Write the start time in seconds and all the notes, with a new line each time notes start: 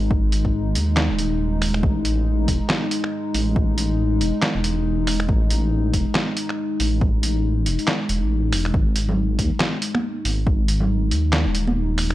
Already playing: G#1 G#3 D#4
0.11 kick
0.32 closed hi-hat
0.45 kick
0.75 D#2, closed hi-hat
0.97 snare, clap
1.10 D#1
1.19 closed hi-hat
1.62 finger snap, open hi-hat
1.74 finger snap
1.83 A1, kick
2.05 closed hi-hat
2.48 E1, kick, closed hi-hat
2.70 snare, clap
2.91 closed hi-hat
3.04 finger snap
3.34 A1, open hi-hat
3.56 kick
3.78 closed hi-hat
4.21 E1, closed hi-hat
4.42 snare, clap
4.55 E1
4.64 closed hi-hat
5.07 finger snap, open hi-hat
5.20 finger snap
5.29 A1, kick
5.50 closed hi-hat
5.93 E1, kick, closed hi-hat
6.15 snare, clap
6.37 closed hi-hat
6.49 finger snap
6.80 A1, open hi-hat
7.01 kick
7.23 closed hi-hat
7.66 E1, closed hi-hat
7.79 closed hi-hat
7.88 snare, clap
8.09 E1, closed hi-hat
8.22 A1
8.52 E1, finger snap, open hi-hat
8.65 finger snap
8.74 G#1 G#3 D#4, kick
8.96 closed hi-hat
9.09 low conga
9.39 D#2, kick, closed hi-hat
9.60 snare, clap
9.82 closed hi-hat
9.95 finger snap, high conga
10.25 G#1, open hi-hat
10.47 kick
10.68 closed hi-hat
10.80 low conga
11.11 D#2, closed hi-hat
11.33 snare, clap
11.45 D#1
11.55 closed hi-hat
11.67 high conga
11.98 finger snap, open hi-hat
12.10 finger snap